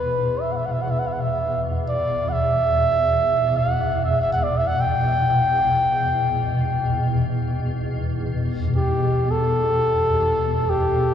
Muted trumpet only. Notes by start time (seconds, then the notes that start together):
Already playing: B4
0.41 E5
0.52 F#5
0.56 E5
0.66 F#5
0.72 E5
0.82 F#5
0.91 E5
0.99 F#5
1.07 E5
1.13 F#5
1.21 E5
1.89 D5
2.29 E5 F#5
3.57 F#5
4.04 E5
4.22 E5
4.32 F#5
4.43 D5
4.57 E5
4.67 F#5
4.80 G5
8.76 G4
9.31 A4
10.70 G4